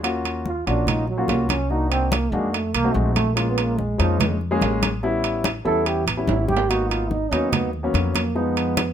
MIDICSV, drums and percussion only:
0, 0, Header, 1, 2, 480
1, 0, Start_track
1, 0, Key_signature, -6, "minor"
1, 0, Tempo, 415800
1, 50, Time_signature, 4, 2, 24, 8
1, 10311, End_track
2, 0, Start_track
2, 0, Title_t, "Drums"
2, 41, Note_on_c, 9, 63, 35
2, 49, Note_on_c, 9, 65, 84
2, 157, Note_off_c, 9, 63, 0
2, 165, Note_off_c, 9, 65, 0
2, 283, Note_on_c, 9, 63, 37
2, 293, Note_on_c, 9, 65, 69
2, 399, Note_off_c, 9, 63, 0
2, 409, Note_off_c, 9, 65, 0
2, 526, Note_on_c, 9, 63, 67
2, 641, Note_off_c, 9, 63, 0
2, 777, Note_on_c, 9, 65, 62
2, 892, Note_off_c, 9, 65, 0
2, 1004, Note_on_c, 9, 63, 34
2, 1004, Note_on_c, 9, 64, 77
2, 1017, Note_on_c, 9, 65, 88
2, 1120, Note_off_c, 9, 63, 0
2, 1120, Note_off_c, 9, 64, 0
2, 1132, Note_off_c, 9, 65, 0
2, 1241, Note_on_c, 9, 63, 33
2, 1357, Note_off_c, 9, 63, 0
2, 1478, Note_on_c, 9, 63, 78
2, 1492, Note_on_c, 9, 65, 70
2, 1492, Note_on_c, 9, 66, 72
2, 1593, Note_off_c, 9, 63, 0
2, 1608, Note_off_c, 9, 65, 0
2, 1608, Note_off_c, 9, 66, 0
2, 1721, Note_on_c, 9, 63, 82
2, 1732, Note_on_c, 9, 65, 96
2, 1837, Note_off_c, 9, 63, 0
2, 1847, Note_off_c, 9, 65, 0
2, 1964, Note_on_c, 9, 63, 35
2, 2079, Note_off_c, 9, 63, 0
2, 2208, Note_on_c, 9, 63, 34
2, 2212, Note_on_c, 9, 65, 74
2, 2323, Note_off_c, 9, 63, 0
2, 2327, Note_off_c, 9, 65, 0
2, 2444, Note_on_c, 9, 63, 99
2, 2456, Note_on_c, 9, 65, 94
2, 2560, Note_off_c, 9, 63, 0
2, 2571, Note_off_c, 9, 65, 0
2, 2687, Note_on_c, 9, 63, 32
2, 2803, Note_off_c, 9, 63, 0
2, 2926, Note_on_c, 9, 63, 33
2, 2936, Note_on_c, 9, 65, 72
2, 3041, Note_off_c, 9, 63, 0
2, 3051, Note_off_c, 9, 65, 0
2, 3165, Note_on_c, 9, 63, 36
2, 3169, Note_on_c, 9, 65, 97
2, 3281, Note_off_c, 9, 63, 0
2, 3284, Note_off_c, 9, 65, 0
2, 3400, Note_on_c, 9, 63, 78
2, 3515, Note_off_c, 9, 63, 0
2, 3646, Note_on_c, 9, 63, 80
2, 3649, Note_on_c, 9, 65, 76
2, 3761, Note_off_c, 9, 63, 0
2, 3765, Note_off_c, 9, 65, 0
2, 3887, Note_on_c, 9, 63, 36
2, 3889, Note_on_c, 9, 65, 89
2, 4002, Note_off_c, 9, 63, 0
2, 4005, Note_off_c, 9, 65, 0
2, 4128, Note_on_c, 9, 63, 36
2, 4130, Note_on_c, 9, 65, 74
2, 4244, Note_off_c, 9, 63, 0
2, 4246, Note_off_c, 9, 65, 0
2, 4369, Note_on_c, 9, 63, 68
2, 4484, Note_off_c, 9, 63, 0
2, 4614, Note_on_c, 9, 65, 70
2, 4729, Note_off_c, 9, 65, 0
2, 4848, Note_on_c, 9, 63, 34
2, 4848, Note_on_c, 9, 64, 88
2, 4856, Note_on_c, 9, 65, 93
2, 4964, Note_off_c, 9, 63, 0
2, 4964, Note_off_c, 9, 64, 0
2, 4971, Note_off_c, 9, 65, 0
2, 5093, Note_on_c, 9, 63, 37
2, 5209, Note_off_c, 9, 63, 0
2, 5327, Note_on_c, 9, 63, 82
2, 5336, Note_on_c, 9, 65, 68
2, 5336, Note_on_c, 9, 66, 76
2, 5443, Note_off_c, 9, 63, 0
2, 5451, Note_off_c, 9, 65, 0
2, 5451, Note_off_c, 9, 66, 0
2, 5568, Note_on_c, 9, 63, 86
2, 5572, Note_on_c, 9, 65, 99
2, 5683, Note_off_c, 9, 63, 0
2, 5688, Note_off_c, 9, 65, 0
2, 5809, Note_on_c, 9, 63, 36
2, 5924, Note_off_c, 9, 63, 0
2, 6046, Note_on_c, 9, 63, 36
2, 6049, Note_on_c, 9, 65, 73
2, 6162, Note_off_c, 9, 63, 0
2, 6165, Note_off_c, 9, 65, 0
2, 6284, Note_on_c, 9, 63, 95
2, 6295, Note_on_c, 9, 65, 94
2, 6399, Note_off_c, 9, 63, 0
2, 6410, Note_off_c, 9, 65, 0
2, 6526, Note_on_c, 9, 63, 33
2, 6641, Note_off_c, 9, 63, 0
2, 6765, Note_on_c, 9, 63, 34
2, 6769, Note_on_c, 9, 65, 70
2, 6881, Note_off_c, 9, 63, 0
2, 6884, Note_off_c, 9, 65, 0
2, 7004, Note_on_c, 9, 63, 35
2, 7014, Note_on_c, 9, 65, 95
2, 7119, Note_off_c, 9, 63, 0
2, 7130, Note_off_c, 9, 65, 0
2, 7244, Note_on_c, 9, 63, 84
2, 7259, Note_on_c, 9, 65, 75
2, 7359, Note_off_c, 9, 63, 0
2, 7375, Note_off_c, 9, 65, 0
2, 7486, Note_on_c, 9, 63, 84
2, 7579, Note_on_c, 9, 66, 99
2, 7601, Note_off_c, 9, 63, 0
2, 7695, Note_off_c, 9, 66, 0
2, 7728, Note_on_c, 9, 63, 35
2, 7742, Note_on_c, 9, 65, 80
2, 7843, Note_off_c, 9, 63, 0
2, 7857, Note_off_c, 9, 65, 0
2, 7964, Note_on_c, 9, 63, 35
2, 7981, Note_on_c, 9, 65, 72
2, 8080, Note_off_c, 9, 63, 0
2, 8096, Note_off_c, 9, 65, 0
2, 8206, Note_on_c, 9, 63, 65
2, 8321, Note_off_c, 9, 63, 0
2, 8457, Note_on_c, 9, 65, 70
2, 8573, Note_off_c, 9, 65, 0
2, 8687, Note_on_c, 9, 63, 35
2, 8687, Note_on_c, 9, 64, 86
2, 8692, Note_on_c, 9, 65, 94
2, 8802, Note_off_c, 9, 63, 0
2, 8802, Note_off_c, 9, 64, 0
2, 8807, Note_off_c, 9, 65, 0
2, 8926, Note_on_c, 9, 63, 36
2, 9042, Note_off_c, 9, 63, 0
2, 9168, Note_on_c, 9, 63, 90
2, 9177, Note_on_c, 9, 65, 74
2, 9283, Note_off_c, 9, 63, 0
2, 9292, Note_off_c, 9, 65, 0
2, 9404, Note_on_c, 9, 63, 83
2, 9415, Note_on_c, 9, 65, 104
2, 9519, Note_off_c, 9, 63, 0
2, 9530, Note_off_c, 9, 65, 0
2, 9647, Note_on_c, 9, 63, 36
2, 9763, Note_off_c, 9, 63, 0
2, 9886, Note_on_c, 9, 63, 37
2, 9894, Note_on_c, 9, 65, 71
2, 10002, Note_off_c, 9, 63, 0
2, 10009, Note_off_c, 9, 65, 0
2, 10126, Note_on_c, 9, 63, 100
2, 10127, Note_on_c, 9, 65, 98
2, 10241, Note_off_c, 9, 63, 0
2, 10243, Note_off_c, 9, 65, 0
2, 10311, End_track
0, 0, End_of_file